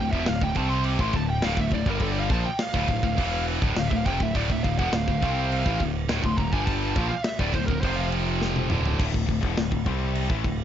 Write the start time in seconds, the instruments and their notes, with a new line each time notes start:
Already playing: lead electric guitar G5
0.00 picked electric bass D1, distorted electric guitar D2 A2
0.11 picked electric bass E1, distorted electric guitar E2 B2, lead electric guitar E5, kick
0.26 picked electric bass D1, distorted electric guitar D2 A2, lead electric guitar F5, snare, crash
0.41 picked electric bass D1, distorted electric guitar D2 A2, lead electric guitar G5, kick
0.55 picked electric bass C2, distorted electric guitar C3, lead electric guitar A5, kick, crash
0.59 distorted electric guitar G3 C4
0.69 lead electric guitar C6
0.84 lead electric guitar D6, crash
0.99 picked electric bass A1, distorted electric guitar A2 E3, lead electric guitar C6, kick
1.13 picked electric bass D1, distorted electric guitar D2 A2, lead electric guitar A5, kick, crash
1.30 lead electric guitar G5
1.42 picked electric bass D1, distorted electric guitar D2 A2, lead electric guitar F5, snare, crash
1.57 picked electric bass D1, distorted electric guitar D2 A2, lead electric guitar E5, kick
1.70 picked electric bass D1, distorted electric guitar D2 A2, lead electric guitar D5, kick, crash
1.86 picked electric bass G1, distorted electric guitar G2 D3 G3, kick
1.90 lead electric guitar A#4
2.00 lead electric guitar A4, kick, crash
2.12 lead electric guitar D5
2.20 lead electric guitar F5
2.30 picked electric bass A#1, distorted electric guitar A#2 F3, lead electric guitar A5, kick, crash
2.46 lead electric guitar G5
2.59 lead electric guitar F5, snare, crash
2.74 picked electric bass D1, distorted electric guitar D2 A2, kick
2.88 picked electric bass D1, distorted electric guitar D2 A2, kick, crash
3.03 picked electric bass D1, distorted electric guitar D2 A2, kick
3.17 picked electric bass E1, distorted electric guitar E2 B2 E3, kick, crash
3.48 crash
3.62 picked electric bass D1, distorted electric guitar D2 A2, kick
3.75 picked electric bass D1, distorted electric guitar D2 A2, lead electric guitar F5, snare, crash
3.88 picked electric bass D1, lead electric guitar E5, kick
3.92 distorted electric guitar D2 A2
3.96 lead electric guitar F5
4.06 picked electric bass F1, distorted electric guitar F2 C3, lead electric guitar G5, kick, crash
4.20 picked electric bass D1, distorted electric guitar D2 A2, lead electric guitar E5, kick
4.35 picked electric bass D1, distorted electric guitar D2 A2, lead electric guitar D5, kick, crash
4.50 picked electric bass D1, distorted electric guitar D2 A2, lead electric guitar E5, kick
4.64 picked electric bass D1, distorted electric guitar D2 A2, lead electric guitar F5, kick, crash
4.79 picked electric bass E1, distorted electric guitar E2 B2, lead electric guitar F#5, kick
4.92 picked electric bass D1, distorted electric guitar D2 A2, lead electric guitar F5, snare, crash
5.07 picked electric bass D1, distorted electric guitar D2 A2, kick
5.21 picked electric bass C2, distorted electric guitar C3 G3 C4, kick, crash
5.52 crash
5.66 picked electric bass A1, distorted electric guitar A2 E3, kick
5.80 picked electric bass D1, distorted electric guitar D2 A2, kick, crash
6.09 picked electric bass D1, distorted electric guitar D2 A2, snare, crash
6.24 picked electric bass D1, distorted electric guitar D2 A2, lead electric guitar C6, kick
6.37 picked electric bass D1, distorted electric guitar D2 A2, lead electric guitar A#5, kick, crash
6.52 picked electric bass G1, distorted electric guitar G2 D3 G3, lead electric guitar G#5, kick
6.65 lead electric guitar A5, kick, crash
6.95 picked electric bass A#1, distorted electric guitar A#2 F3, kick, crash
7.08 lead electric guitar F5
7.23 lead electric guitar E5, snare, crash
7.39 picked electric bass D1, distorted electric guitar D2 A2, lead electric guitar D5, kick
7.54 picked electric bass D1, distorted electric guitar D2 A2, lead electric guitar C5, kick, crash
7.67 picked electric bass D1, distorted electric guitar D2 A2, lead electric guitar A#4, kick
7.81 picked electric bass F1, distorted electric guitar F2 C3 F3, lead electric guitar C5, kick, crash
7.96 lead electric guitar F5
8.12 crash
8.42 snare
8.56 high tom
8.68 picked electric bass D1, distorted electric guitar D2 A2 D3, mid tom
8.86 floor tom
8.97 picked electric bass D1, distorted electric guitar D2 A2, kick, crash
9.12 picked electric bass D1, distorted electric guitar D2 A2, kick
9.26 picked electric bass D1, distorted electric guitar D2 A2, kick, crash
9.31 distorted electric guitar D2 A2
9.41 picked electric bass E1, distorted electric guitar E2 B2, kick
9.57 picked electric bass D1, distorted electric guitar D2 A2, snare, crash
9.71 picked electric bass D1, distorted electric guitar D2 A2, kick
9.86 picked electric bass C2, distorted electric guitar C3 G3 C4, kick, crash
10.15 crash
10.30 picked electric bass A1, distorted electric guitar A2 E3, kick
10.44 picked electric bass D1, distorted electric guitar D2 A2, kick, crash